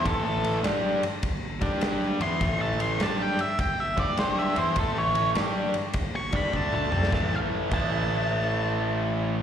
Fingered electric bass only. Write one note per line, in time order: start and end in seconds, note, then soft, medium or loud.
0.06 0.61 A1 medium
0.63 1.00 G2 medium
1.62 2.17 G2 medium
2.20 2.39 E2 medium
2.41 2.96 A1 medium
3.00 3.36 G2 medium
3.98 4.53 G2 medium
4.57 4.75 E2 medium
4.77 5.32 A1 medium
5.36 5.72 G2 medium
6.33 6.52 G2 medium
6.53 6.90 D2 medium
6.92 7.11 C2 medium
7.12 7.34 A1 medium
7.72 9.43 A1 medium